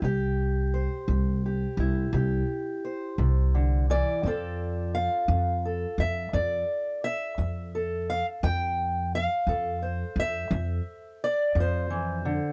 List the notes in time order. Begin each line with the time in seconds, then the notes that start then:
0.02 C2 C3 G4
0.74 C5
1.08 C2 C3
1.46 G4
1.77 C2 E4
2.13 C2 C3 G4
2.85 C5
3.18 C2 C3
3.54 D3
3.90 E3 D5
4.23 F2 F3 C4 F4
4.27 A4
4.95 F5
5.28 F2 F3
5.65 A4
5.98 F2 E5
6.33 F2 F3 D5
7.04 E5
7.38 F2 F3
7.75 A4
8.10 F5
8.43 F2 F3 G5
9.15 F5
9.47 F2 F3 A4
9.82 C5
10.16 F2 E5
10.51 F2 F3
11.24 D5
11.55 F2 F3
11.60 C5
11.90 E3
12.25 D3